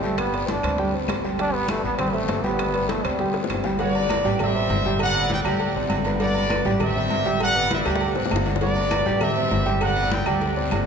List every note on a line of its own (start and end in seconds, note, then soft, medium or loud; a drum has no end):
0.00 0.58 G1 medium
0.00 0.28 G3 medium
0.00 0.18 A3 medium
0.00 0.28 G4 medium
0.00 0.28 G5 medium
0.00 high bongo soft
0.00 short guiro medium
0.18 0.51 B3 medium
0.18 high bongo medium
0.18 high conga soft
0.18 high timbale medium
0.18 long guiro medium
0.18 claves medium
0.33 0.58 B3 medium
0.33 0.58 B4 medium
0.33 0.58 D5 medium
0.33 high bongo soft
0.33 high conga soft
0.33 high timbale medium
0.48 0.94 D4 medium
0.48 high bongo medium
0.48 high conga loud
0.48 high timbale medium
0.48 short guiro medium
0.63 1.05 D2 medium
0.63 0.76 C4 medium
0.63 0.76 C5 medium
0.63 0.76 D5 medium
0.63 high timbale medium
0.63 short guiro medium
0.63 claves medium
0.78 0.91 G3 medium
0.78 0.91 G4 medium
0.78 0.91 G5 medium
0.78 high bongo medium
0.78 high conga soft
0.78 long guiro medium
0.93 1.18 C4 medium
0.93 1.19 C5 medium
0.93 1.19 D5 medium
0.93 high bongo soft
0.93 high conga soft
1.08 1.78 G1 medium
1.08 high bongo medium
1.08 low bongo medium
1.08 high conga medium
1.08 high timbale loud
1.08 low timbale medium
1.08 short guiro medium
1.08 claves medium
1.24 1.36 G3 medium
1.24 1.36 G4 medium
1.24 1.37 G5 medium
1.24 high bongo soft
1.24 short guiro medium
1.39 1.64 G3 medium
1.39 1.55 D4 loud
1.39 1.64 G4 medium
1.39 1.64 G5 medium
1.39 high bongo medium
1.39 high conga soft
1.39 high timbale medium
1.39 long guiro medium
1.54 1.69 B3 loud
1.54 high bongo soft
1.54 high conga soft
1.68 1.83 A3 medium
1.68 1.93 B3 medium
1.68 1.94 B4 medium
1.68 1.94 D5 medium
1.68 high bongo medium
1.68 high conga loud
1.68 high timbale medium
1.68 short guiro medium
1.68 claves medium
1.84 2.26 A1 medium
1.84 1.97 B3 loud
1.84 high conga soft
1.84 short guiro medium
1.98 2.11 G3 medium
1.98 2.15 C4 loud
1.98 2.12 G4 medium
1.98 2.12 G5 medium
1.98 high bongo medium
1.98 high conga soft
1.98 low conga medium
1.98 high timbale medium
1.98 long guiro medium
1.98 claves medium
2.14 2.45 A3 medium
2.14 2.39 C4 medium
2.14 2.39 C5 medium
2.14 2.39 E5 medium
2.14 high bongo soft
2.14 high conga soft
2.29 2.99 G1 loud
2.29 high bongo medium
2.29 low bongo medium
2.29 high conga medium
2.29 high timbale medium
2.29 low timbale medium
2.29 short guiro medium
2.43 2.69 G3 medium
2.43 2.91 B3 loud
2.43 2.69 G4 medium
2.43 2.69 G5 medium
2.43 high bongo soft
2.43 high conga medium
2.43 short guiro medium
2.59 high bongo medium
2.59 high conga soft
2.59 high timbale medium
2.59 long guiro medium
2.59 claves medium
2.74 2.99 B3 medium
2.74 2.99 B4 medium
2.74 2.99 D5 medium
2.74 high bongo soft
2.74 high conga soft
2.74 high timbale medium
2.89 3.06 A3 medium
2.89 high bongo medium
2.89 high conga loud
2.89 high timbale medium
2.89 short guiro medium
3.04 3.46 D2 medium
3.04 3.50 G3 medium
3.04 3.17 C4 medium
3.04 3.17 C5 medium
3.04 3.17 D5 medium
3.04 high timbale loud
3.04 short guiro medium
3.04 claves medium
3.19 3.32 G3 medium
3.19 3.32 G4 medium
3.19 3.33 G5 medium
3.19 high bongo medium
3.19 high conga soft
3.19 long guiro medium
3.34 3.59 C4 medium
3.34 3.60 C5 medium
3.34 3.60 D5 medium
3.34 high bongo loud
3.34 high conga soft
3.44 low bongo loud
3.49 4.19 G1 loud
3.49 high conga medium
3.49 high timbale medium
3.49 short guiro medium
3.49 claves medium
3.54 low bongo medium
3.64 3.77 G3 medium
3.64 3.77 G4 medium
3.64 3.77 G5 medium
3.64 low bongo loud
3.64 short guiro medium
3.79 4.04 G3 medium
3.79 4.37 F#4 medium
3.79 4.05 B4 medium
3.79 4.37 B4 medium
3.79 4.37 D5 loud
3.79 4.05 F#5 medium
3.79 cowbell loud
3.79 high conga soft
3.79 low agogo medium
3.79 long guiro medium
3.95 high conga soft
3.95 low agogo medium
4.09 4.22 B3 medium
4.09 4.22 B4 medium
4.09 4.23 D5 medium
4.09 cowbell medium
4.09 high conga loud
4.09 low agogo loud
4.09 short guiro medium
4.09 claves medium
4.24 4.67 A1 loud
4.24 4.49 G3 loud
4.24 4.50 G4 medium
4.24 4.50 G5 loud
4.24 cowbell medium
4.24 high conga soft
4.24 short guiro medium
4.39 4.97 G4 medium
4.39 4.97 C5 medium
4.39 5.01 E5 loud
4.39 cowbell medium
4.39 high conga soft
4.39 low conga medium
4.39 low agogo loud
4.39 long guiro medium
4.39 claves medium
4.55 4.80 C4 medium
4.55 4.80 C5 medium
4.55 4.80 E5 medium
4.55 high conga soft
4.69 5.39 G1 loud
4.69 cowbell medium
4.69 high conga medium
4.69 low agogo loud
4.69 short guiro medium
4.85 5.10 G3 medium
4.85 5.10 G4 medium
4.85 5.10 G5 loud
4.85 cowbell medium
4.85 high conga medium
4.85 short guiro medium
4.99 5.57 B4 loud
4.99 5.46 D5 medium
4.99 5.29 F#5 loud
4.99 cowbell loud
4.99 high conga soft
4.99 low agogo loud
4.99 long guiro medium
4.99 claves medium
5.15 5.40 B3 medium
5.15 5.40 B4 medium
5.15 5.40 D5 medium
5.15 high conga soft
5.15 low agogo medium
5.29 5.39 G5 loud
5.29 cowbell medium
5.29 high conga loud
5.29 short guiro medium
5.45 5.73 D2 loud
5.45 5.70 G3 loud
5.45 5.70 G4 loud
5.45 6.02 G4 medium
5.45 6.02 A4 medium
5.45 5.88 D5 medium
5.45 5.70 G5 loud
5.45 low agogo loud
5.45 short guiro medium
5.45 claves medium
5.59 cowbell medium
5.59 high conga soft
5.59 low agogo medium
5.59 long guiro medium
5.75 5.89 A1 medium
5.75 6.00 C4 medium
5.75 6.00 C5 medium
5.75 6.01 D5 medium
5.75 high conga soft
5.90 6.60 G1 loud
5.90 cowbell medium
5.90 high conga medium
5.90 low agogo loud
5.90 short guiro medium
5.90 claves medium
6.05 6.18 B3 medium
6.05 6.18 B4 medium
6.05 6.18 D5 medium
6.05 cowbell medium
6.05 high conga medium
6.05 low agogo medium
6.05 short guiro medium
6.20 6.45 G3 medium
6.20 6.78 F#4 medium
6.20 6.45 B4 medium
6.20 6.77 B4 medium
6.20 6.77 D5 loud
6.20 6.45 F#5 loud
6.20 cowbell loud
6.20 high conga soft
6.20 low agogo medium
6.20 long guiro medium
6.35 high conga soft
6.35 low agogo medium
6.50 6.63 B3 medium
6.50 6.63 B4 medium
6.50 6.63 D5 medium
6.50 cowbell medium
6.50 high conga loud
6.50 low agogo loud
6.50 short guiro medium
6.50 claves medium
6.65 7.07 A1 loud
6.65 6.90 G3 loud
6.65 6.90 G4 medium
6.65 6.91 G5 medium
6.65 cowbell medium
6.65 high conga soft
6.65 short guiro medium
6.80 7.38 G4 medium
6.80 7.38 C5 medium
6.80 7.42 E5 loud
6.80 cowbell loud
6.80 high conga soft
6.80 low conga medium
6.80 low agogo loud
6.80 long guiro medium
6.80 claves medium
6.96 7.20 C4 medium
6.96 7.20 C5 medium
6.96 7.20 E5 medium
6.96 high conga soft
6.96 low conga medium
7.10 7.80 G1 medium
7.10 cowbell medium
7.10 high conga loud
7.10 low agogo medium
7.10 short guiro medium
7.25 7.50 G3 medium
7.25 7.50 G4 medium
7.25 7.51 G5 medium
7.25 cowbell medium
7.25 short guiro medium
7.40 7.98 B4 medium
7.40 7.86 D5 loud
7.40 7.70 F#5 loud
7.40 cowbell loud
7.40 high conga soft
7.40 low agogo loud
7.40 long guiro medium
7.40 claves medium
7.55 7.80 B3 medium
7.55 7.81 B4 medium
7.55 7.81 D5 medium
7.55 high conga soft
7.55 low agogo medium
7.71 7.79 E5 loud
7.71 cowbell medium
7.71 high conga loud
7.71 short guiro medium
7.86 8.14 D2 loud
7.86 8.11 G3 medium
7.86 8.11 G4 loud
7.86 8.43 G4 medium
7.86 8.43 A4 medium
7.86 8.29 D5 medium
7.86 8.11 G5 medium
7.86 high bongo medium
7.86 low agogo loud
7.86 short guiro medium
7.86 claves medium
7.95 high bongo loud
8.01 cowbell loud
8.01 high conga soft
8.01 low agogo loud
8.01 long guiro medium
8.15 8.30 A1 medium
8.15 8.41 C4 medium
8.15 8.41 C5 medium
8.15 8.41 D5 medium
8.15 low bongo medium
8.15 high conga soft
8.25 low bongo loud
8.31 9.01 G1 loud
8.31 cowbell medium
8.31 high conga loud
8.31 low timbale medium
8.31 low agogo loud
8.31 short guiro medium
8.31 claves medium
8.36 low bongo loud
8.46 8.59 B3 medium
8.46 8.59 B4 medium
8.46 8.59 D5 medium
8.46 cowbell medium
8.46 high conga medium
8.46 low agogo medium
8.46 short guiro medium
8.56 low bongo loud
8.61 8.86 G3 medium
8.61 9.18 F#4 medium
8.61 8.86 B4 medium
8.61 9.18 B4 medium
8.61 9.18 D5 loud
8.61 8.87 F#5 medium
8.61 cowbell loud
8.61 high conga soft
8.61 low agogo medium
8.61 long guiro medium
8.76 high conga soft
8.76 low agogo medium
8.91 9.03 B3 medium
8.91 9.04 B4 medium
8.91 9.04 D5 medium
8.91 cowbell medium
8.91 high conga loud
8.91 low agogo loud
8.91 short guiro medium
8.91 claves medium
9.06 9.48 A1 loud
9.06 9.30 G3 medium
9.06 9.31 G4 medium
9.06 9.31 G5 loud
9.06 cowbell medium
9.06 high conga soft
9.06 short guiro medium
9.21 9.78 G4 medium
9.21 9.79 C5 medium
9.21 9.82 E5 loud
9.21 cowbell medium
9.21 high conga soft
9.21 low conga medium
9.21 low agogo loud
9.21 long guiro medium
9.21 claves medium
9.36 9.61 C4 medium
9.36 9.61 C5 medium
9.36 9.61 E5 medium
9.36 high conga soft
9.51 10.21 G1 loud
9.51 cowbell medium
9.51 high conga medium
9.51 low agogo medium
9.51 short guiro medium
9.66 9.91 G3 medium
9.66 9.91 G4 medium
9.66 9.91 G5 medium
9.66 cowbell medium
9.66 short guiro medium
9.81 10.38 B4 medium
9.81 10.25 D5 medium
9.81 10.11 F#5 loud
9.81 cowbell loud
9.81 high conga soft
9.81 low agogo loud
9.81 long guiro medium
9.81 claves medium
9.96 10.21 B3 medium
9.96 10.21 B4 medium
9.96 10.21 D5 medium
9.96 high conga soft
9.96 low agogo medium
10.11 10.26 G5 loud
10.11 cowbell medium
10.11 high conga loud
10.11 short guiro medium
10.26 10.68 D2 medium
10.26 10.51 G3 medium
10.26 10.52 G4 medium
10.26 10.83 G4 medium
10.26 10.83 A4 medium
10.26 10.72 D5 medium
10.26 10.52 G5 loud
10.26 low agogo loud
10.26 short guiro medium
10.26 claves medium
10.41 cowbell medium
10.41 high conga soft
10.41 low agogo medium
10.41 long guiro medium
10.57 10.81 C4 medium
10.57 10.81 C5 medium
10.57 10.81 D5 medium
10.57 high conga soft
10.71 10.86 G1 loud
10.71 cowbell medium
10.71 high conga medium
10.71 low timbale medium
10.71 low agogo loud
10.71 short guiro medium
10.71 claves medium